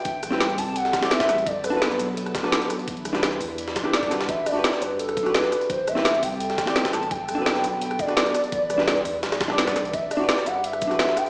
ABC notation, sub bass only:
X:1
M:4/4
L:1/16
Q:1/4=170
K:Em
V:1 name="Sub bass" clef=bass
z2 A,,,4 C,,4 z4 A,,,2 | G,,,6 B,,,4 D,,,4 z2 | z2 C,,4 E,,4 G,,,4 C,,2 | E,,,6 G,,,4 B,,,4 z2 |
z2 A,,,4 C,,4 z4 A,,,2 | G,,,6 B,,,4 D,,,4 z2 | z2 C,,4 E,,2 G,,,3 C,,4- C,, | E,,,6 G,,,4 B,,,4 z2 |]